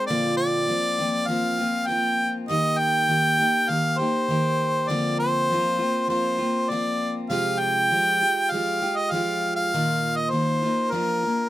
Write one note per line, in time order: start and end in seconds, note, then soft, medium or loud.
0.00 0.11 A#4 medium
0.06 0.69 A#2 medium
0.06 0.69 D3 medium
0.06 0.66 F3 medium
0.06 0.68 A#3 medium
0.06 0.69 C4 medium
0.06 0.36 D5 medium
0.11 0.70 F4 medium
0.37 1.28 D5 medium
0.67 0.98 F3 soft
0.67 0.99 A#3 soft
0.67 0.98 C4 medium
0.67 0.97 F4 medium
0.98 1.27 F3 soft
0.98 1.28 A#3 soft
0.98 1.29 C4 soft
0.98 1.29 F4 soft
1.27 1.59 F3 medium
1.27 1.59 A#3 medium
1.27 1.88 F5 medium
1.31 1.59 C4 medium
1.31 1.57 F4 medium
1.58 1.87 F3 soft
1.58 1.88 A#3 soft
1.58 1.89 C4 soft
1.58 1.89 F4 soft
1.87 2.48 F3 soft
1.87 2.49 A#3 soft
1.87 2.50 C4 medium
1.87 2.33 G5 medium
1.92 2.50 F4 soft
2.48 3.07 D#3 medium
2.48 3.09 A#3 medium
2.48 3.09 D#4 medium
2.48 3.09 G4 medium
2.48 2.80 D#5 medium
2.78 3.71 G5 medium
3.08 3.39 D#3 soft
3.08 3.40 A#3 soft
3.08 3.39 D#4 soft
3.08 3.37 G4 medium
3.38 3.69 A#3 soft
3.38 3.70 D#4 soft
3.38 3.69 G4 soft
3.69 4.00 D#3 medium
3.69 4.00 A#3 soft
3.69 4.00 D#4 medium
3.69 3.98 G4 medium
3.69 4.00 F5 medium
3.98 4.29 A#3 soft
3.98 4.29 D#4 soft
3.98 4.30 G4 soft
3.98 4.90 C5 medium
4.28 4.89 D#3 soft
4.28 4.89 A#3 medium
4.28 4.90 D#4 medium
4.28 4.91 G4 medium
4.89 5.50 D3 medium
4.89 5.50 F3 medium
4.89 5.50 A#3 medium
4.89 5.52 C4 medium
4.89 5.53 F4 medium
4.89 5.19 D5 medium
5.19 6.06 C5 medium
5.50 5.81 F3 soft
5.50 5.80 A#3 soft
5.50 5.79 C4 soft
5.50 5.77 F4 medium
5.79 6.09 A#3 soft
5.79 6.09 C4 soft
5.79 6.10 F4 soft
6.08 6.39 F3 medium
6.08 6.40 A#3 soft
6.08 6.39 C4 medium
6.08 6.37 F4 medium
6.08 6.71 C5 medium
6.38 6.70 A#3 soft
6.38 6.71 C4 soft
6.38 6.70 F4 soft
6.69 7.30 F3 soft
6.69 7.30 A#3 medium
6.69 7.30 C4 medium
6.69 7.15 D5 medium
6.74 7.31 F4 medium
7.29 7.91 C3 medium
7.29 7.91 F3 medium
7.29 7.91 G#3 medium
7.29 7.93 F4 medium
7.29 7.92 G4 medium
7.29 7.61 F5 medium
7.60 8.52 G5 loud
7.91 8.21 F3 medium
7.91 8.22 G#3 soft
7.91 8.21 F4 medium
7.91 8.20 G4 medium
8.21 8.52 G#3 soft
8.21 8.52 F4 soft
8.21 8.51 G4 soft
8.50 8.82 F3 medium
8.50 8.82 G#3 medium
8.50 8.98 F5 medium
8.54 8.83 F4 medium
8.54 8.81 G4 medium
8.82 9.12 G#3 soft
8.82 9.13 F4 soft
8.82 9.12 G4 soft
8.97 9.13 D#5 medium
9.12 9.74 F3 soft
9.12 9.73 G#3 medium
9.12 9.75 F4 medium
9.12 9.73 G4 medium
9.12 9.55 F5 medium
9.56 10.18 F5 medium
9.74 10.33 A#2 medium
9.74 10.31 D#3 medium
9.74 10.32 A#3 medium
9.74 10.33 D#4 medium
9.74 10.34 F4 medium
10.16 10.32 D#5 medium
10.30 10.62 D#3 soft
10.30 10.62 A#3 soft
10.30 10.93 C5 medium
10.34 10.63 D#4 soft
10.34 10.61 F4 soft
10.62 10.91 A#3 soft
10.62 10.93 D#4 soft
10.62 10.92 F4 soft
10.92 11.22 F3 medium
10.92 11.22 A#3 soft
10.92 11.23 D4 medium
10.92 11.22 F4 medium
10.92 11.49 A#4 medium
11.23 11.49 A#3 soft
11.23 11.49 D4 soft
11.23 11.49 F4 soft